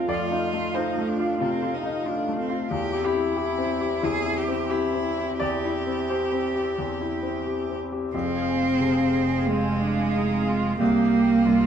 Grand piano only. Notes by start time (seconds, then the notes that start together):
Already playing: C3 A3 D#4 F4 A4 C5
0.08 F2 D5
0.31 D#4
0.53 A3
0.74 F4 C5
0.97 A3
1.19 F4
1.40 C3 F4
1.63 F4
1.83 D#4
2.06 F4
2.28 A3
2.49 F4
2.71 E2
2.93 G4
3.04 G4
3.15 E4
3.37 G4
3.58 C4
3.81 G4
4.03 E2 E4
4.26 E4
4.48 C4
4.70 G4
4.93 C4
5.17 G4
5.40 E2 D5
5.65 E4
5.87 C4
6.09 G4 C5
6.32 C4
6.55 G4
6.78 E2
7.01 E4
7.23 C4
7.46 G4
7.69 C4
7.92 G4
8.14 F2
8.79 C3
10.80 C2
11.46 G2